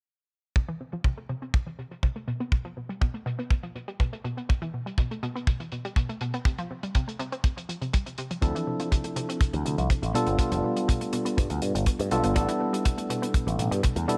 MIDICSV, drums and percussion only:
0, 0, Header, 1, 2, 480
1, 0, Start_track
1, 0, Tempo, 491803
1, 546, Time_signature, 4, 2, 24, 8
1, 13836, End_track
2, 0, Start_track
2, 0, Title_t, "Drums"
2, 544, Note_on_c, 9, 36, 101
2, 545, Note_on_c, 9, 42, 91
2, 642, Note_off_c, 9, 36, 0
2, 642, Note_off_c, 9, 42, 0
2, 662, Note_on_c, 9, 42, 49
2, 760, Note_off_c, 9, 42, 0
2, 900, Note_on_c, 9, 42, 49
2, 998, Note_off_c, 9, 42, 0
2, 1019, Note_on_c, 9, 36, 92
2, 1028, Note_on_c, 9, 42, 96
2, 1116, Note_off_c, 9, 36, 0
2, 1126, Note_off_c, 9, 42, 0
2, 1146, Note_on_c, 9, 42, 49
2, 1244, Note_off_c, 9, 42, 0
2, 1260, Note_on_c, 9, 42, 67
2, 1358, Note_off_c, 9, 42, 0
2, 1392, Note_on_c, 9, 42, 52
2, 1489, Note_off_c, 9, 42, 0
2, 1502, Note_on_c, 9, 36, 110
2, 1509, Note_on_c, 9, 42, 89
2, 1600, Note_off_c, 9, 36, 0
2, 1606, Note_off_c, 9, 42, 0
2, 1634, Note_on_c, 9, 42, 50
2, 1731, Note_off_c, 9, 42, 0
2, 1747, Note_on_c, 9, 42, 64
2, 1845, Note_off_c, 9, 42, 0
2, 1870, Note_on_c, 9, 42, 52
2, 1967, Note_off_c, 9, 42, 0
2, 1981, Note_on_c, 9, 36, 85
2, 1986, Note_on_c, 9, 42, 96
2, 2079, Note_off_c, 9, 36, 0
2, 2083, Note_off_c, 9, 42, 0
2, 2108, Note_on_c, 9, 42, 46
2, 2206, Note_off_c, 9, 42, 0
2, 2224, Note_on_c, 9, 42, 71
2, 2322, Note_off_c, 9, 42, 0
2, 2347, Note_on_c, 9, 42, 52
2, 2445, Note_off_c, 9, 42, 0
2, 2459, Note_on_c, 9, 36, 104
2, 2466, Note_on_c, 9, 42, 85
2, 2557, Note_off_c, 9, 36, 0
2, 2563, Note_off_c, 9, 42, 0
2, 2590, Note_on_c, 9, 42, 50
2, 2687, Note_off_c, 9, 42, 0
2, 2834, Note_on_c, 9, 42, 53
2, 2931, Note_off_c, 9, 42, 0
2, 2944, Note_on_c, 9, 36, 98
2, 2948, Note_on_c, 9, 42, 92
2, 3041, Note_off_c, 9, 36, 0
2, 3045, Note_off_c, 9, 42, 0
2, 3070, Note_on_c, 9, 42, 50
2, 3167, Note_off_c, 9, 42, 0
2, 3193, Note_on_c, 9, 42, 74
2, 3291, Note_off_c, 9, 42, 0
2, 3312, Note_on_c, 9, 42, 53
2, 3410, Note_off_c, 9, 42, 0
2, 3421, Note_on_c, 9, 36, 104
2, 3423, Note_on_c, 9, 42, 90
2, 3519, Note_off_c, 9, 36, 0
2, 3521, Note_off_c, 9, 42, 0
2, 3545, Note_on_c, 9, 42, 48
2, 3642, Note_off_c, 9, 42, 0
2, 3666, Note_on_c, 9, 42, 64
2, 3764, Note_off_c, 9, 42, 0
2, 3787, Note_on_c, 9, 42, 50
2, 3884, Note_off_c, 9, 42, 0
2, 3903, Note_on_c, 9, 36, 90
2, 3911, Note_on_c, 9, 42, 86
2, 4000, Note_off_c, 9, 36, 0
2, 4009, Note_off_c, 9, 42, 0
2, 4032, Note_on_c, 9, 42, 53
2, 4130, Note_off_c, 9, 42, 0
2, 4145, Note_on_c, 9, 42, 67
2, 4243, Note_off_c, 9, 42, 0
2, 4273, Note_on_c, 9, 42, 47
2, 4371, Note_off_c, 9, 42, 0
2, 4386, Note_on_c, 9, 42, 82
2, 4390, Note_on_c, 9, 36, 104
2, 4483, Note_off_c, 9, 42, 0
2, 4487, Note_off_c, 9, 36, 0
2, 4508, Note_on_c, 9, 42, 45
2, 4605, Note_off_c, 9, 42, 0
2, 4753, Note_on_c, 9, 42, 45
2, 4851, Note_off_c, 9, 42, 0
2, 4858, Note_on_c, 9, 36, 95
2, 4862, Note_on_c, 9, 42, 84
2, 4956, Note_off_c, 9, 36, 0
2, 4960, Note_off_c, 9, 42, 0
2, 4991, Note_on_c, 9, 42, 47
2, 5088, Note_off_c, 9, 42, 0
2, 5105, Note_on_c, 9, 42, 64
2, 5202, Note_off_c, 9, 42, 0
2, 5236, Note_on_c, 9, 42, 52
2, 5334, Note_off_c, 9, 42, 0
2, 5340, Note_on_c, 9, 36, 112
2, 5348, Note_on_c, 9, 42, 89
2, 5438, Note_off_c, 9, 36, 0
2, 5446, Note_off_c, 9, 42, 0
2, 5467, Note_on_c, 9, 42, 50
2, 5565, Note_off_c, 9, 42, 0
2, 5580, Note_on_c, 9, 42, 63
2, 5677, Note_off_c, 9, 42, 0
2, 5708, Note_on_c, 9, 42, 49
2, 5806, Note_off_c, 9, 42, 0
2, 5819, Note_on_c, 9, 36, 97
2, 5822, Note_on_c, 9, 42, 93
2, 5916, Note_off_c, 9, 36, 0
2, 5920, Note_off_c, 9, 42, 0
2, 5948, Note_on_c, 9, 42, 51
2, 6046, Note_off_c, 9, 42, 0
2, 6058, Note_on_c, 9, 42, 71
2, 6156, Note_off_c, 9, 42, 0
2, 6185, Note_on_c, 9, 42, 51
2, 6282, Note_off_c, 9, 42, 0
2, 6297, Note_on_c, 9, 36, 120
2, 6301, Note_on_c, 9, 42, 90
2, 6395, Note_off_c, 9, 36, 0
2, 6399, Note_off_c, 9, 42, 0
2, 6426, Note_on_c, 9, 42, 52
2, 6523, Note_off_c, 9, 42, 0
2, 6668, Note_on_c, 9, 42, 49
2, 6765, Note_off_c, 9, 42, 0
2, 6780, Note_on_c, 9, 42, 84
2, 6783, Note_on_c, 9, 36, 92
2, 6878, Note_off_c, 9, 42, 0
2, 6881, Note_off_c, 9, 36, 0
2, 6917, Note_on_c, 9, 42, 51
2, 7014, Note_off_c, 9, 42, 0
2, 7022, Note_on_c, 9, 42, 69
2, 7120, Note_off_c, 9, 42, 0
2, 7148, Note_on_c, 9, 42, 46
2, 7245, Note_off_c, 9, 42, 0
2, 7261, Note_on_c, 9, 36, 122
2, 7265, Note_on_c, 9, 42, 88
2, 7358, Note_off_c, 9, 36, 0
2, 7363, Note_off_c, 9, 42, 0
2, 7396, Note_on_c, 9, 42, 52
2, 7493, Note_off_c, 9, 42, 0
2, 7509, Note_on_c, 9, 42, 68
2, 7606, Note_off_c, 9, 42, 0
2, 7629, Note_on_c, 9, 42, 48
2, 7726, Note_off_c, 9, 42, 0
2, 7744, Note_on_c, 9, 42, 90
2, 7749, Note_on_c, 9, 36, 100
2, 7842, Note_off_c, 9, 42, 0
2, 7847, Note_off_c, 9, 36, 0
2, 7871, Note_on_c, 9, 42, 46
2, 7969, Note_off_c, 9, 42, 0
2, 7982, Note_on_c, 9, 42, 73
2, 8079, Note_off_c, 9, 42, 0
2, 8109, Note_on_c, 9, 42, 48
2, 8206, Note_off_c, 9, 42, 0
2, 8220, Note_on_c, 9, 42, 82
2, 8221, Note_on_c, 9, 36, 97
2, 8318, Note_off_c, 9, 36, 0
2, 8318, Note_off_c, 9, 42, 0
2, 8354, Note_on_c, 9, 42, 48
2, 8452, Note_off_c, 9, 42, 0
2, 8586, Note_on_c, 9, 42, 49
2, 8683, Note_off_c, 9, 42, 0
2, 8706, Note_on_c, 9, 36, 86
2, 8708, Note_on_c, 9, 42, 90
2, 8803, Note_off_c, 9, 36, 0
2, 8806, Note_off_c, 9, 42, 0
2, 8824, Note_on_c, 9, 42, 49
2, 8922, Note_off_c, 9, 42, 0
2, 8943, Note_on_c, 9, 42, 66
2, 9041, Note_off_c, 9, 42, 0
2, 9074, Note_on_c, 9, 42, 55
2, 9171, Note_off_c, 9, 42, 0
2, 9181, Note_on_c, 9, 36, 122
2, 9187, Note_on_c, 9, 42, 83
2, 9278, Note_off_c, 9, 36, 0
2, 9285, Note_off_c, 9, 42, 0
2, 9306, Note_on_c, 9, 42, 45
2, 9403, Note_off_c, 9, 42, 0
2, 9426, Note_on_c, 9, 42, 69
2, 9524, Note_off_c, 9, 42, 0
2, 9548, Note_on_c, 9, 42, 45
2, 9645, Note_off_c, 9, 42, 0
2, 9663, Note_on_c, 9, 36, 92
2, 9664, Note_on_c, 9, 42, 76
2, 9760, Note_off_c, 9, 36, 0
2, 9762, Note_off_c, 9, 42, 0
2, 9789, Note_on_c, 9, 42, 45
2, 9886, Note_off_c, 9, 42, 0
2, 9907, Note_on_c, 9, 42, 77
2, 10005, Note_off_c, 9, 42, 0
2, 10018, Note_on_c, 9, 42, 46
2, 10116, Note_off_c, 9, 42, 0
2, 10137, Note_on_c, 9, 36, 97
2, 10141, Note_on_c, 9, 42, 88
2, 10234, Note_off_c, 9, 36, 0
2, 10239, Note_off_c, 9, 42, 0
2, 10265, Note_on_c, 9, 42, 56
2, 10362, Note_off_c, 9, 42, 0
2, 10507, Note_on_c, 9, 42, 52
2, 10604, Note_off_c, 9, 42, 0
2, 10627, Note_on_c, 9, 36, 93
2, 10633, Note_on_c, 9, 42, 87
2, 10724, Note_off_c, 9, 36, 0
2, 10731, Note_off_c, 9, 42, 0
2, 10747, Note_on_c, 9, 42, 50
2, 10844, Note_off_c, 9, 42, 0
2, 10860, Note_on_c, 9, 42, 67
2, 10958, Note_off_c, 9, 42, 0
2, 10988, Note_on_c, 9, 42, 55
2, 11086, Note_off_c, 9, 42, 0
2, 11107, Note_on_c, 9, 36, 98
2, 11108, Note_on_c, 9, 42, 91
2, 11204, Note_off_c, 9, 36, 0
2, 11206, Note_off_c, 9, 42, 0
2, 11224, Note_on_c, 9, 42, 48
2, 11321, Note_off_c, 9, 42, 0
2, 11339, Note_on_c, 9, 42, 69
2, 11437, Note_off_c, 9, 42, 0
2, 11471, Note_on_c, 9, 42, 57
2, 11569, Note_off_c, 9, 42, 0
2, 11578, Note_on_c, 9, 42, 86
2, 11579, Note_on_c, 9, 36, 97
2, 11675, Note_off_c, 9, 42, 0
2, 11677, Note_off_c, 9, 36, 0
2, 11707, Note_on_c, 9, 42, 51
2, 11805, Note_off_c, 9, 42, 0
2, 11821, Note_on_c, 9, 42, 71
2, 11919, Note_off_c, 9, 42, 0
2, 11942, Note_on_c, 9, 42, 53
2, 12040, Note_off_c, 9, 42, 0
2, 12061, Note_on_c, 9, 42, 85
2, 12064, Note_on_c, 9, 36, 101
2, 12158, Note_off_c, 9, 42, 0
2, 12162, Note_off_c, 9, 36, 0
2, 12186, Note_on_c, 9, 42, 54
2, 12284, Note_off_c, 9, 42, 0
2, 12434, Note_on_c, 9, 42, 59
2, 12532, Note_off_c, 9, 42, 0
2, 12545, Note_on_c, 9, 42, 98
2, 12548, Note_on_c, 9, 36, 97
2, 12642, Note_off_c, 9, 42, 0
2, 12645, Note_off_c, 9, 36, 0
2, 12670, Note_on_c, 9, 42, 51
2, 12768, Note_off_c, 9, 42, 0
2, 12788, Note_on_c, 9, 42, 72
2, 12886, Note_off_c, 9, 42, 0
2, 12914, Note_on_c, 9, 42, 60
2, 13011, Note_off_c, 9, 42, 0
2, 13022, Note_on_c, 9, 36, 99
2, 13026, Note_on_c, 9, 42, 82
2, 13120, Note_off_c, 9, 36, 0
2, 13123, Note_off_c, 9, 42, 0
2, 13155, Note_on_c, 9, 42, 47
2, 13252, Note_off_c, 9, 42, 0
2, 13265, Note_on_c, 9, 42, 71
2, 13363, Note_off_c, 9, 42, 0
2, 13391, Note_on_c, 9, 42, 57
2, 13488, Note_off_c, 9, 42, 0
2, 13503, Note_on_c, 9, 42, 94
2, 13512, Note_on_c, 9, 36, 89
2, 13601, Note_off_c, 9, 42, 0
2, 13610, Note_off_c, 9, 36, 0
2, 13626, Note_on_c, 9, 42, 54
2, 13724, Note_off_c, 9, 42, 0
2, 13753, Note_on_c, 9, 42, 69
2, 13836, Note_off_c, 9, 42, 0
2, 13836, End_track
0, 0, End_of_file